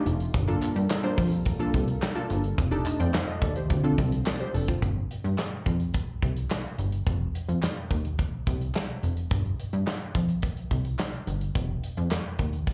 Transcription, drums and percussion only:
0.06 closed hi-hat medium
0.20 closed hi-hat medium
0.34 kick loud
0.34 closed hi-hat medium
0.48 closed hi-hat soft
0.62 clap medium
0.62 closed hi-hat medium
0.76 closed hi-hat medium
0.90 snare loud
0.90 clap medium
1.04 closed hi-hat soft
1.18 kick loud
1.18 open hi-hat medium
1.32 closed hi-hat soft
1.46 kick loud
1.46 closed hi-hat medium
1.60 closed hi-hat soft
1.74 kick loud
1.74 closed hi-hat medium
1.88 closed hi-hat medium
2.02 snare loud
2.02 clap medium
2.30 closed hi-hat medium
2.44 closed hi-hat medium
2.58 kick loud
2.58 closed hi-hat medium
2.72 closed hi-hat soft
2.86 clap medium
2.86 closed hi-hat medium
3.00 closed hi-hat medium
3.14 snare loud
3.14 clap medium
3.14 clap loud
3.42 kick loud
3.42 closed hi-hat medium
3.56 closed hi-hat soft
3.70 kick loud
3.70 closed hi-hat medium
3.98 kick loud
3.98 closed hi-hat medium
4.12 closed hi-hat medium
4.26 snare loud
4.26 clap medium
4.40 closed hi-hat soft
4.54 open hi-hat medium
4.68 kick medium
4.68 closed hi-hat medium
4.82 kick loud
4.82 closed hi-hat medium
5.11 closed hi-hat medium
5.24 closed hi-hat soft
5.38 snare loud
5.38 clap medium
5.66 kick medium
5.66 closed hi-hat medium
5.80 closed hi-hat soft
5.94 kick medium
5.94 closed hi-hat medium
6.22 kick medium
6.22 closed hi-hat medium
6.36 closed hi-hat medium
6.50 snare loud
6.50 clap medium
6.64 closed hi-hat soft
6.78 closed hi-hat medium
6.92 closed hi-hat medium
7.06 kick loud
7.06 closed hi-hat medium
7.35 closed hi-hat medium
7.49 closed hi-hat medium
7.63 snare loud
7.63 clap medium
7.91 kick medium
7.91 closed hi-hat medium
8.05 closed hi-hat soft
8.19 kick medium
8.19 closed hi-hat medium
8.47 kick loud
8.47 closed hi-hat medium
8.61 closed hi-hat medium
8.75 snare loud
8.75 clap medium
8.76 clap medium
9.03 closed hi-hat medium
9.17 closed hi-hat medium
9.31 kick loud
9.31 closed hi-hat medium
9.45 closed hi-hat soft
9.59 closed hi-hat medium
9.73 closed hi-hat soft
9.87 snare loud
9.87 clap medium
10.01 closed hi-hat soft
10.15 kick medium
10.15 closed hi-hat medium
10.29 closed hi-hat soft
10.42 kick medium
10.42 closed hi-hat medium
10.57 closed hi-hat soft
10.71 kick medium
10.71 closed hi-hat medium
10.85 closed hi-hat soft
10.99 snare loud
10.99 clap medium
11.27 closed hi-hat medium
11.41 closed hi-hat soft
11.55 kick loud
11.55 closed hi-hat medium
11.84 closed hi-hat medium
11.97 closed hi-hat soft
12.11 snare loud
12.11 clap medium
12.39 kick medium
12.39 closed hi-hat medium
12.53 closed hi-hat soft
12.67 kick loud
12.67 crash medium

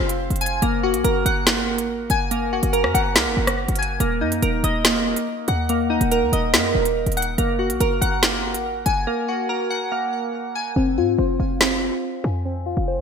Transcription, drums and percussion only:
0.09 closed hi-hat medium
0.30 closed hi-hat soft
0.36 closed hi-hat medium
0.41 closed hi-hat medium
0.46 closed hi-hat medium
0.62 closed hi-hat medium
0.94 closed hi-hat medium
1.04 closed hi-hat medium
1.26 closed hi-hat medium
1.47 snare loud
1.47 closed hi-hat loud
1.78 closed hi-hat medium
2.10 closed hi-hat medium
2.31 closed hi-hat medium
2.63 closed hi-hat medium
2.73 closed hi-hat medium
2.84 cross-stick medium
2.95 closed hi-hat medium
3.16 snare loud
3.16 closed hi-hat loud
3.47 cross-stick medium
3.47 closed hi-hat medium
3.68 closed hi-hat medium
3.76 closed hi-hat medium
3.83 closed hi-hat medium
4.00 closed hi-hat medium
4.32 closed hi-hat medium
4.42 closed hi-hat medium
4.64 closed hi-hat medium
4.85 snare loud
4.85 closed hi-hat loud
5.16 closed hi-hat medium
5.48 closed hi-hat medium
5.69 closed hi-hat medium
6.01 closed hi-hat medium
6.12 closed hi-hat medium
6.33 closed hi-hat medium
6.54 snare loud
6.54 closed hi-hat medium
6.85 closed hi-hat medium
7.06 closed hi-hat soft
7.12 closed hi-hat medium
7.17 closed hi-hat medium
7.22 closed hi-hat medium
7.38 closed hi-hat medium
7.70 closed hi-hat medium
7.81 closed hi-hat medium
8.02 closed hi-hat medium
8.23 snare loud
8.23 closed hi-hat loud
8.54 closed hi-hat medium
8.86 closed hi-hat medium
11.61 snare loud

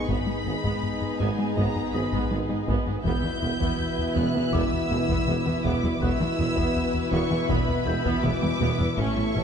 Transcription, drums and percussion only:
0.09 taiko medium
0.65 taiko medium
1.58 taiko medium
2.13 taiko medium
2.68 taiko medium
3.05 taiko medium
3.61 taiko medium
4.54 taiko medium
5.09 taiko medium
5.65 taiko medium
6.02 taiko medium
6.57 taiko medium
7.50 taiko medium
8.05 taiko medium
8.24 taiko mid medium
8.42 taiko high medium
8.60 taiko high medium
8.79 taiko low medium
8.97 taiko medium

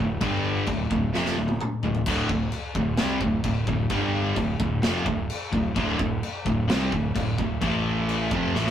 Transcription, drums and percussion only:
0.21 kick loud
0.21 china medium
0.67 kick medium
0.67 china medium
0.91 kick loud
1.14 snare medium
1.25 snare medium
1.48 high tom medium
1.61 mid tom loud
1.83 floor tom loud
1.95 floor tom loud
2.06 kick loud
2.06 china medium
2.06 crash loud
2.29 kick loud
2.52 china medium
2.75 kick loud
2.97 snare loud
2.97 china medium
3.21 kick loud
3.44 kick loud
3.44 china medium
3.67 kick loud
3.90 kick loud
3.90 china medium
4.36 kick medium
4.36 china medium
4.60 kick loud
4.83 snare loud
4.83 china medium
5.06 kick medium
5.30 china medium
5.53 kick medium
5.76 kick loud
5.76 china medium
5.99 kick loud
6.23 china medium
6.46 kick loud
6.70 snare loud
6.70 china medium
6.92 kick medium
7.16 kick medium
7.16 china medium
7.38 kick loud
7.62 kick loud
7.62 china medium
8.09 china medium
8.31 kick loud
8.55 snare medium
8.67 snare medium

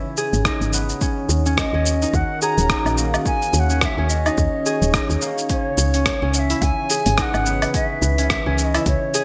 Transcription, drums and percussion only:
0.17 shaker medium
0.33 shaker soft
0.45 kick loud
0.45 cross-stick medium
0.45 shaker soft
0.62 shaker soft
0.73 shaker medium
0.89 shaker soft
1.01 kick loud
1.01 shaker soft
1.29 shaker medium
1.46 shaker soft
1.57 kick loud
1.57 cross-stick loud
1.57 shaker soft
1.86 shaker medium
2.02 shaker soft
2.14 kick loud
2.14 shaker soft
2.42 shaker medium
2.58 shaker soft
2.70 kick loud
2.70 cross-stick medium
2.70 shaker soft
2.86 low woodblock medium
2.86 shaker soft
2.98 shaker medium
3.14 low woodblock medium
3.14 shaker soft
3.26 kick loud
3.26 shaker soft
3.42 shaker soft
3.54 shaker medium
3.70 shaker soft
3.81 kick loud
3.81 cross-stick medium
3.81 shaker soft
4.10 shaker medium
4.26 low woodblock medium
4.26 shaker soft
4.38 kick loud
4.38 shaker soft
4.66 shaker medium
4.82 shaker soft
4.94 kick loud
4.94 cross-stick medium
4.94 shaker soft
5.10 shaker soft
5.22 shaker medium
5.38 shaker soft
5.50 kick medium
5.50 closed hi-hat soft
5.50 shaker soft
5.78 shaker medium
5.94 closed hi-hat soft
5.94 shaker soft
6.06 kick loud
6.06 cross-stick medium
6.06 closed hi-hat medium
6.06 shaker soft
6.34 closed hi-hat soft
6.34 shaker medium
6.50 closed hi-hat soft
6.50 shaker soft
6.62 kick loud
6.62 closed hi-hat soft
6.62 shaker soft
6.90 closed hi-hat soft
6.90 shaker medium
7.06 closed hi-hat soft
7.06 shaker soft
7.18 kick loud
7.18 cross-stick medium
7.18 closed hi-hat medium
7.18 shaker soft
7.34 low woodblock medium
7.34 shaker soft
7.46 shaker medium
7.62 closed hi-hat soft
7.62 low woodblock medium
7.62 shaker soft
7.74 kick loud
7.74 closed hi-hat medium
7.74 shaker soft
8.02 shaker medium
8.18 closed hi-hat soft
8.18 shaker soft
8.30 kick loud
8.30 cross-stick medium
8.30 closed hi-hat medium
8.30 shaker soft
8.58 closed hi-hat soft
8.58 shaker medium
8.75 closed hi-hat soft
8.75 low woodblock medium
8.75 shaker soft
8.86 kick medium
8.86 closed hi-hat medium
8.86 shaker soft
9.14 closed hi-hat soft
9.14 shaker medium

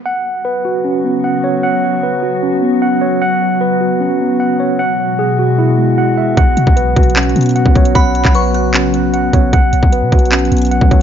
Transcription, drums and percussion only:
6.37 kick loud
6.37 closed hi-hat medium
6.57 closed hi-hat medium
6.67 kick loud
6.77 closed hi-hat medium
6.96 kick loud
6.96 closed hi-hat medium
7.03 closed hi-hat medium
7.10 closed hi-hat medium
7.16 clap loud
7.16 closed hi-hat soft
7.23 closed hi-hat soft
7.29 closed hi-hat medium
7.36 closed hi-hat medium
7.41 closed hi-hat medium
7.43 closed hi-hat medium
7.46 closed hi-hat medium
7.49 closed hi-hat medium
7.51 closed hi-hat soft
7.56 closed hi-hat medium
7.66 kick loud
7.75 kick loud
7.75 closed hi-hat medium
7.85 closed hi-hat loud
7.95 kick loud
7.95 closed hi-hat medium
8.15 closed hi-hat medium
8.25 kick loud
8.25 clap medium
8.35 closed hi-hat medium
8.54 closed hi-hat medium
8.74 clap loud
8.74 closed hi-hat medium
8.94 closed hi-hat medium
9.14 closed hi-hat medium
9.33 kick loud
9.33 closed hi-hat medium
9.53 kick loud
9.53 closed hi-hat medium
9.73 closed hi-hat medium
9.83 kick loud
9.93 closed hi-hat medium
10.12 kick loud
10.12 closed hi-hat medium
10.19 closed hi-hat medium
10.25 closed hi-hat medium
10.32 clap loud
10.32 closed hi-hat soft
10.39 closed hi-hat soft
10.45 closed hi-hat medium
10.52 closed hi-hat medium
10.57 closed hi-hat medium
10.58 closed hi-hat medium
10.62 closed hi-hat medium
10.65 closed hi-hat medium
10.67 closed hi-hat soft
10.71 closed hi-hat medium
10.81 kick loud
10.91 kick loud
10.91 closed hi-hat medium

